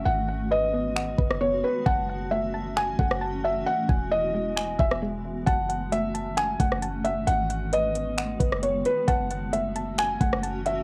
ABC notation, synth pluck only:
X:1
M:4/4
L:1/8
Q:1/4=133
K:F#dor
V:1 name="Synth pluck"
z f B B, f B B,2 | a f A, a f A, a f | z g E G, g e G,2 | a f A, a f A, a f |
z f B B, f B B,2 | a f A, a f A, a f |]